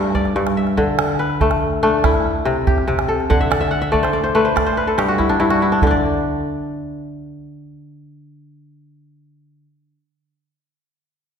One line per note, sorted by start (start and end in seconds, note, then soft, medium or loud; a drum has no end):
0.00 0.35 G2 medium
0.00 1.30 A3 medium
0.00 0.98 D4 medium
0.00 0.75 B4 medium
0.15 1.26 D5 medium
0.15 calabash thump medium
0.25 calabash click soft
0.36 0.83 G2 medium
0.47 calabash click medium
0.57 1.60 E5 medium
0.67 calabash click soft
0.77 2.09 D3 medium
0.77 calabash thump medium
0.99 calabash click medium
1.09 calabash click soft
1.19 2.42 B4 medium
1.41 1.82 A3 medium
1.41 calabash thump medium
1.41 calabash click soft
1.51 calabash click soft
1.83 3.83 A3 medium
1.83 3.51 D4 medium
1.83 calabash click soft
2.04 3.61 E4 medium
2.04 calabash thump medium
2.04 calabash click medium
2.14 calabash click soft
2.45 2.86 C3 medium
2.67 3.36 G4 medium
2.67 calabash thump medium
2.78 calabash click soft
2.88 3.35 C3 medium
2.99 calabash click medium
3.08 4.40 A4 medium
3.20 calabash click soft
3.30 4.61 D3 medium
3.30 3.70 F#5 medium
3.30 calabash thump medium
3.30 calabash click soft
3.41 3.60 E5 medium
3.51 3.92 D5 medium
3.51 calabash click medium
3.61 3.81 E5 medium
3.71 4.67 F#5 medium
3.82 4.85 E5 medium
3.82 calabash click soft
3.92 4.34 A3 medium
3.92 4.13 D5 medium
3.92 calabash thump medium
4.03 4.23 C5 medium
4.03 calabash click soft
4.13 4.55 D5 medium
4.24 4.44 C5 medium
4.35 6.34 A3 medium
4.35 4.72 B4 medium
4.35 calabash click soft
4.45 4.66 C5 medium
4.56 5.66 D5 medium
4.56 calabash thump medium
4.56 calabash click medium
4.66 5.85 C5 medium
4.77 6.00 B4 medium
4.87 6.19 A4 medium
4.98 5.39 G2 medium
4.98 5.56 G4 medium
4.98 calabash click medium
5.08 5.46 F#4 medium
5.18 5.39 E4 medium
5.18 calabash thump medium
5.18 calabash click soft
5.29 5.72 D4 medium
5.40 5.87 G2 medium
5.40 5.62 E4 medium
5.40 calabash click soft
5.50 6.96 F#4 medium
5.50 calabash click medium
5.61 7.19 E4 medium
5.61 calabash click soft
5.72 5.86 D4 medium
5.82 9.65 D3 medium
5.82 calabash thump medium
5.87 9.69 D4 medium
5.87 9.73 D5 medium